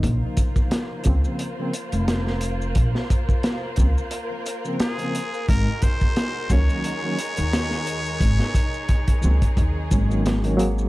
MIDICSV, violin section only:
0, 0, Header, 1, 2, 480
1, 0, Start_track
1, 0, Key_signature, -5, "minor"
1, 0, Tempo, 681818
1, 23, Time_signature, 4, 2, 24, 8
1, 7665, End_track
2, 0, Start_track
2, 0, Title_t, "Violin section"
2, 0, Program_c, 0, 48
2, 24, Note_on_c, 0, 58, 71
2, 24, Note_on_c, 0, 65, 66
2, 24, Note_on_c, 0, 70, 72
2, 26, Note_on_c, 0, 72, 68
2, 3835, Note_off_c, 0, 58, 0
2, 3835, Note_off_c, 0, 65, 0
2, 3836, Note_off_c, 0, 72, 0
2, 3852, Note_on_c, 0, 66, 62
2, 3857, Note_on_c, 0, 56, 73
2, 3858, Note_on_c, 0, 63, 69
2, 5758, Note_off_c, 0, 66, 0
2, 5787, Note_on_c, 0, 68, 70
2, 7665, Note_off_c, 0, 56, 0
2, 7665, Note_off_c, 0, 63, 0
2, 7665, Note_off_c, 0, 68, 0
2, 7665, Note_off_c, 0, 70, 0
2, 7665, End_track
0, 0, End_of_file